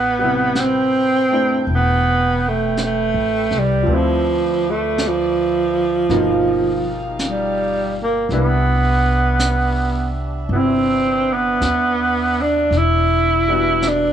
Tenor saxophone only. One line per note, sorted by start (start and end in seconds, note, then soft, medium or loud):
0.00 0.62 B3 medium
0.61 1.69 C4 medium
1.75 2.50 B3 medium
2.49 2.80 A3 medium
2.85 3.61 A3 medium
3.59 3.97 G3 medium
3.95 4.72 F3 medium
4.71 5.10 A3 medium
5.08 7.07 F3 medium
7.29 7.96 G3 medium
8.03 8.32 A#3 medium
8.37 10.15 B3 medium
10.52 10.59 B3 soft
10.58 11.35 C4 medium
11.33 12.43 B3 medium
12.42 12.79 D4 medium
12.78 13.90 E4 medium
13.88 14.13 D4 medium